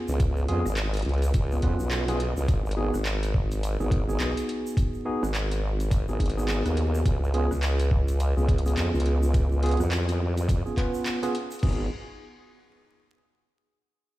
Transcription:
Already playing: tine electric piano B3 C#4 F4 G#4
0.08 wobble bass C#2, shaker
0.20 kick, closed hi-hat, shaker
0.37 shaker
0.48 wobble bass F2, tine electric piano B3 C#4 F4 G#4, closed hi-hat
0.66 wobble bass G#1, cross-stick, shaker
0.77 clap, closed hi-hat, shaker
0.94 closed hi-hat, shaker
0.97 closed hi-hat
0.99 closed hi-hat
1.02 wobble bass C#2, closed hi-hat
1.09 closed hi-hat
1.14 closed hi-hat
1.18 closed hi-hat
1.22 closed hi-hat, shaker
1.34 wobble bass C#2, kick, closed hi-hat, shaker
1.51 tine electric piano B3 C#4 F4 G#4, shaker
1.62 wobble bass F2, tine electric piano B3 C#4 F4 B4, kick, closed hi-hat
1.79 wobble bass B1, shaker
1.91 clap, closed hi-hat, shaker
2.08 tine electric piano B3 C#4 F4 G#4, cross-stick, closed hi-hat, shaker
2.20 closed hi-hat
2.37 wobble bass C#2, shaker
2.48 wobble bass G#1, kick, closed hi-hat, shaker
2.66 shaker
2.71 closed hi-hat
2.77 tine electric piano B3 D#4 F#4 G#4
2.94 wobble bass G#1, cross-stick, shaker
3.05 clap, closed hi-hat, shaker
3.23 closed hi-hat, shaker
3.34 kick
3.52 closed hi-hat, shaker
3.63 closed hi-hat, shaker
3.80 wobble bass G#1, tine electric piano B3 D#4 F#4 G#4, shaker
3.91 kick, closed hi-hat
4.08 tine electric piano B3 D#4 F#4 G#4, shaker
4.20 wobble bass B1, clap, closed hi-hat, shaker
4.37 closed hi-hat, shaker
4.49 closed hi-hat
4.67 shaker
4.77 kick, closed hi-hat, shaker
4.94 shaker
5.05 tine electric piano B3 D#4 F#4 G#4
5.23 wobble bass G#1, cross-stick, shaker
5.35 clap, closed hi-hat, shaker
5.51 closed hi-hat, shaker
5.80 closed hi-hat, shaker
5.91 kick, closed hi-hat, shaker
6.08 wobble bass G#1, tine electric piano B3 D#4 F#4 G#4, shaker
6.20 wobble bass G#1, kick, closed hi-hat
6.26 closed hi-hat
6.30 closed hi-hat
6.37 tine electric piano B3 D#4 F#4 G#4, shaker
6.48 clap, closed hi-hat, shaker
6.65 wobble bass D#2, cross-stick, closed hi-hat, shaker
6.77 closed hi-hat
6.95 shaker
7.06 wobble bass C#2, kick, closed hi-hat, shaker
7.24 shaker
7.34 tine electric piano B3 C#4 F4 G#4, closed hi-hat
7.51 wobble bass C#2, cross-stick, shaker
7.63 clap, closed hi-hat, shaker
7.80 closed hi-hat, shaker
7.91 kick
8.08 closed hi-hat, shaker
8.20 closed hi-hat, shaker
8.37 wobble bass C#2, tine electric piano B3 C#4 F4 G#4, shaker
8.48 kick, closed hi-hat
8.58 closed hi-hat
8.66 tine electric piano B3 C#4 F4 G#4, closed hi-hat, shaker
8.77 wobble bass F2, clap, closed hi-hat, shaker
8.94 wobble bass C#2, shaker
9.00 closed hi-hat
9.06 closed hi-hat
9.23 shaker
9.34 kick, closed hi-hat, shaker
9.52 shaker
9.63 tine electric piano B3 C#4 F4 G#4, closed hi-hat
9.66 closed hi-hat
9.69 closed hi-hat
9.71 closed hi-hat
9.77 wobble bass F2, cross-stick, closed hi-hat, shaker
9.92 clap, closed hi-hat, shaker
10.09 closed hi-hat, shaker
10.37 closed hi-hat, shaker
10.49 kick, closed hi-hat, shaker
10.66 tine electric piano B3 C#4 F4 G#4, shaker
10.77 tine electric piano B3 C#4 F4 B4, kick, clap, closed hi-hat
10.94 shaker
11.06 clap, closed hi-hat, shaker
11.23 tine electric piano B3 C#4 F4 G#4, cross-stick, closed hi-hat, shaker
11.35 closed hi-hat
11.51 closed hi-hat, shaker
11.54 closed hi-hat
11.59 wobble bass G#1, tine electric piano B3 F#4 G#4, kick, closed hi-hat
11.63 tine electric piano D#4, closed hi-hat, crash
11.69 closed hi-hat
11.73 closed hi-hat

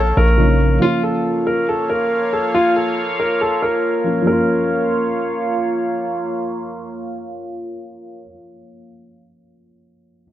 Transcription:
Already playing: 808-style bass A#1, felt piano C#3 F3 C#4 F4, analog synth pad A#3 C#5 F5 C#6, grand piano A4, synth pluck C#5
0.17 808-style bass A#1, grand piano A#4
0.37 felt piano C#3 F3 A#3 C#4 D#4
0.79 felt piano F3 A#3 C#4, analog synth pad A#3 F4 C#5 F5, grand piano F4
0.84 felt piano F4
1.03 grand piano A4
1.47 grand piano A#4
1.69 grand piano A4
1.90 grand piano A#4
2.33 grand piano A4
2.55 grand piano F4
2.76 grand piano A4
3.20 grand piano A#4
3.41 grand piano A4
3.62 grand piano A#4
4.04 felt piano F3 A#3 C#4 F4
4.22 felt piano F3 A#3
4.27 analog synth pad A#3 F4 C#5 F5, felt piano C#4, grand piano A#4
4.32 felt piano F4

